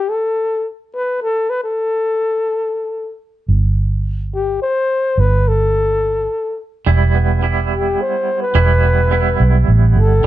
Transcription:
Already playing: flugelhorn G4
0.11 flugelhorn A4
0.95 flugelhorn B4
1.22 flugelhorn A4
1.50 flugelhorn B4
1.64 flugelhorn A4
3.48 fingered electric bass G1
4.34 flugelhorn G4
4.62 flugelhorn C5
5.18 fingered electric bass G1, flugelhorn B4
5.48 flugelhorn A4
6.86 fingered electric bass E1, clean electric guitar G3 E4
7.15 clean electric guitar B3
7.42 clean electric guitar G3 E4
7.73 flugelhorn G4
8.01 flugelhorn C5
8.42 flugelhorn B4
8.55 fingered electric bass E1, clean electric guitar G3 E4
8.83 clean electric guitar B3
9.11 clean electric guitar G3 B3 E4
9.40 fingered electric bass B1
9.68 fingered electric bass A1
9.96 fingered electric bass G1, flugelhorn A4

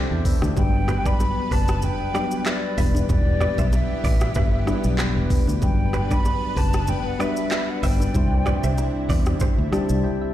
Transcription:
Already playing: analog synth pad C3 C4 D4 E4, synth keys G3 C4 D4 E4 G4 A4 C5 D5, clean electric guitar E4 G4
0.11 fingered electric bass E2, synth keys D5 G5
0.25 synth keys B4 E5, kick, open hi-hat, shaker
0.42 fingered electric bass D2, synth keys A4 D5, cross-stick, low bongo, shaker
0.55 fingered electric bass G1, synth keys F#3 G3 B3 D4 B4, analog synth pad B3 B4, flute G5, kick, low conga, shaker
0.88 clean electric guitar G4 B4, cross-stick, low conga, shaker
1.06 clean electric guitar B4 D5, flute B5, kick, low bongo, shaker
1.20 high bongo, shaker
1.51 fingered electric bass F#1, clean electric guitar G4 B4, flute A5, kick, open hi-hat, shaker
1.68 cross-stick, shaker
1.82 flute G5, low conga, shaker
2.13 synth keys F#3 G3 B3 D4 B4, clean electric guitar B4 D5, cross-stick, high bongo, low bongo, shaker
2.31 shaker
2.46 clean electric guitar B4 E5, flute D5, cross-stick, clap, high bongo, shaker
2.77 fingered electric bass E1, analog synth pad E3 B3 G4, synth keys G3 B3 D4 E4 B4, clean electric guitar B4 E5, kick, open hi-hat, shaker
2.95 low bongo, shaker
3.09 fingered electric bass E1, flute D5, kick, low conga, shaker
3.41 clean electric guitar B4 D5, cross-stick, low conga, shaker
3.58 fingered electric bass B1, clean electric guitar C5 E5, kick, low bongo, shaker
3.73 flute E5, high bongo, shaker
4.04 fingered electric bass A1, clean electric guitar B4 D5, kick, open hi-hat, shaker
4.21 cross-stick, shaker
4.35 fingered electric bass G1, clean electric guitar G4 B4, kick, low conga, shaker
4.66 synth keys G3 B3 D4 E4 B4, cross-stick, high bongo, low bongo, shaker
4.84 fingered electric bass B1, shaker
4.99 clean electric guitar G4 B4, cross-stick, clap, high bongo, shaker
5.16 fingered electric bass E1
5.30 kick, open hi-hat, shaker
5.47 fingered electric bass D2, low bongo, shaker
5.61 fingered electric bass G1, synth keys F#3 G3 B3 D4 B4, analog synth pad B3 D4 B4, flute G5, kick, low conga, shaker
5.93 clean electric guitar G4 B4, cross-stick, low conga, shaker
6.11 clean electric guitar B4 D5, flute B5, kick, low bongo, shaker
6.25 high bongo, shaker
6.57 fingered electric bass F#1, clean electric guitar G4 B4, flute A5, kick, open hi-hat, shaker
6.73 cross-stick, shaker
6.87 flute G5, low conga, shaker
7.07 flute F#5
7.19 synth keys G3 B3 D4 F#4 B4, clean electric guitar B4 D5, flute E5, cross-stick, high bongo, low bongo, shaker
7.37 shaker
7.51 clean electric guitar B4 E5, cross-stick, clap, high bongo, shaker
7.70 flute F#5
7.83 fingered electric bass G1, clean electric guitar C5 E5, flute G5, kick, open hi-hat, shaker
8.00 low bongo, shaker
8.13 fingered electric bass C2, analog synth pad C3 C4 E4, synth keys G3 C4 D4 E4 C5, kick, low conga, shaker
8.46 clean electric guitar B4 D5, cross-stick, low conga, shaker
8.64 fingered electric bass C2, clean electric guitar C5 E5, high bongo, low bongo, shaker
8.78 high bongo, shaker
9.09 fingered electric bass E2, clean electric guitar B4 D5, kick, open hi-hat, shaker
9.26 cross-stick, shaker
9.40 clean electric guitar G4 C5, kick, low conga, shaker
9.58 fingered electric bass D2
9.71 synth keys G3 C4 D4 E4 G4 A5, cross-stick, high bongo, low bongo, shaker
9.89 fingered electric bass C2, shaker
10.04 synth keys G5
10.21 synth keys E5

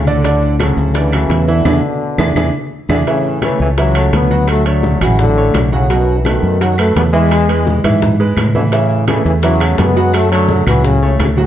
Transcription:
Already playing: fingered electric bass D2
0.07 trombone section A2 D3, grand piano D3 D4 D5, high bongo, high conga, maracas
0.24 grand piano D3 D4 D5, high bongo, high timbale, maracas
0.42 maracas
0.59 trombone section A2 C#3, grand piano F#3 F#4 A4, high bongo, high conga, high timbale, claves, maracas
0.77 fingered electric bass D2, maracas
0.94 trombone section C#3 E3, grand piano D3 D4 D5, high bongo, high conga, high timbale, maracas
1.12 grand piano F#3 F#4 A4, high timbale, claves, maracas
1.29 fingered electric bass E2, high bongo, low bongo, high conga, high timbale, maracas
1.48 trombone section B2 D3, grand piano E3 E4 E5, high conga, maracas
1.65 fingered electric bass E2, grand piano D4 E4 G#4, low bongo, high conga, high timbale, claves, maracas
2.18 fingered electric bass E2, grand piano D4 E4 G#4, low bongo, high conga, high timbale, claves, maracas
2.35 fingered electric bass E2, grand piano D4 E4 G#4, low bongo, high conga, high timbale, claves, maracas
2.89 fingered electric bass E2, trombone section B2 D3, grand piano D4 E4 G#4, low bongo, high conga, high timbale, claves, maracas
3.07 trombone section A2 C#3, grand piano E3 E4 E5, high bongo, high conga, high timbale
3.24 high conga
3.42 trombone section C#3 E3, grand piano A3 A4 C#5, high bongo, high conga, high timbale, claves
3.60 fingered electric bass C#2, trombone section C#3 E3
3.78 trombone section C#3 F#3, grand piano E3 E4 E5, high bongo, high conga, high timbale
3.95 grand piano A3 A4 C#5, high timbale, claves
4.13 fingered electric bass D2, trombone section F#3 B3, high bongo, low bongo, high conga, high timbale
4.31 grand piano F#3 F#4 F#5, high conga
4.47 trombone section F#3 A3, high bongo, high timbale, claves
4.66 trombone section D3 F#3, grand piano A3 A4 C#5, high bongo, high timbale
4.83 high bongo, high conga
5.01 fingered electric bass A1, trombone section C#3 E3, grand piano F#3 F#4 F#5, high conga, low conga, high timbale, claves
5.19 trombone section A2 D3, high bongo, high conga, low conga
5.37 grand piano A3 A4 C#5, high bongo, high conga
5.54 fingered electric bass B1, high bongo, low bongo, high conga, high timbale, low timbale, claves
5.72 trombone section A2 C#3, grand piano F#3 F#4 F#5, high bongo, high conga
5.90 trombone section F#2 B2, grand piano F#3 F#4 F#5, high bongo, high conga, high timbale
6.07 high conga
6.18 trombone section E3
6.25 trombone section B2 D#3, grand piano A3 A4 B4, high bongo, high conga, high timbale, claves
6.43 fingered electric bass F#2
6.61 trombone section D#3 F#3, grand piano F#3 F#4 F#5, high bongo, high conga, high timbale
6.78 trombone section F#3 A3, grand piano A3 A4 B4, high conga, high timbale, claves
6.96 fingered electric bass E2, trombone section F#3 B3, high bongo, low bongo, high conga, high timbale, low timbale
7.13 grand piano E3 E4 E5, trombone section E3 G#3, high conga
7.31 high bongo, high conga, high timbale, claves
7.49 grand piano G#3 G#4 B4, high bongo, high timbale
7.67 high bongo, high conga
7.84 fingered electric bass G#2, grand piano E3 E4 E5, high conga, low conga, high timbale, claves
8.02 high bongo, high conga, low conga
8.20 grand piano G#3 G#4 B4, high bongo, high conga
8.37 fingered electric bass A2, high bongo, low bongo, high conga, high timbale, claves
8.55 trombone section B2 D3, grand piano E3 E4 E5, high bongo, high conga
8.72 trombone section A2 C#3, grand piano E3 E4 E5, high bongo, high conga, high timbale, maracas
8.90 high conga, maracas
9.08 trombone section C#3 E3, grand piano A3 G#4 A4, high bongo, high conga, high timbale, claves, maracas
9.25 fingered electric bass E2, trombone section C#3 E3, maracas
9.42 trombone section C#3 F#3, grand piano E3 E4 E5, high bongo, high conga, high timbale, maracas
9.60 grand piano A3 G#4 A4, high timbale, claves, maracas
9.78 fingered electric bass F#2, trombone section G#3 B3, high bongo, low bongo, high conga, high timbale, low timbale, maracas
9.96 grand piano F#3 F#4 F#5, maracas
10.14 trombone section F#3 A3, high bongo, high timbale, claves, maracas
10.31 trombone section D3 F#3, grand piano A3 A4 C#5, high bongo, high conga, high timbale, maracas
10.48 high bongo, high conga, maracas
10.67 fingered electric bass C#2, trombone section C#3 E3, grand piano F#3 F#4 F#5, high conga, low conga, high timbale, claves, maracas
10.84 trombone section A2 C#3, high bongo, high conga, low conga, maracas
11.02 grand piano A3 A4 C#5, high bongo, high conga, maracas
11.19 fingered electric bass D2, trombone section A2 C#3, high bongo, low bongo, high conga, high timbale, low timbale, claves, maracas
11.37 trombone section A2 D3, grand piano F#3 F#4 F#5, high bongo, high conga, maracas

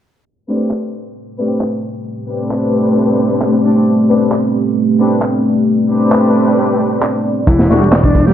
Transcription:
0.26 analog synth pad A3 C4 G4 B4 D5
0.48 string section A3 C4 D4 G4 B4
0.71 clap
1.38 string section A3 C4 D4 G4 B4
1.61 clap
2.29 string section A3 C4 D4 G4 B4
2.51 clap
3.42 clap
3.64 string section A3 C4 D4 G4 D5
4.09 string section A3 C4 D4 G4 B4
4.32 clap
4.99 string section A3 C4 D4 G4 B4
5.22 clap
5.90 string section A3 C4 D4 G4 B4
6.12 clap
7.02 clap
7.47 picked electric bass E1, transistor combo organ E3, analog synth pad E4 E5 F#5 A5, kick, closed hi-hat
7.59 snare
7.70 picked electric bass E1, string section E3 G3 A3 D4 F#4, snare, closed hi-hat
7.81 picked electric bass E1, transistor combo organ G3
7.91 snare, clap, closed hi-hat
8.04 transistor combo organ D4, kick
8.15 kick, closed hi-hat
8.27 transistor combo organ G3, snare

